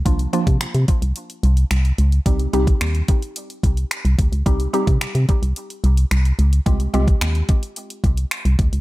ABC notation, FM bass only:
X:1
M:4/4
L:1/16
Q:1/4=109
K:Cm
V:1 name="FM bass" clef=bass
C,,2 z C, z C, z C,, z2 C,,2 C,,2 _D,,2 | C,,2 C,,2 E,,2 z4 C,,2 z C,, D,, _D,, | C,,2 z C, z C, z C,, z2 C,,2 C,,2 _D,,2 | C,,2 C,,2 E,,2 z4 C,,2 z C,, D,, _D,, |]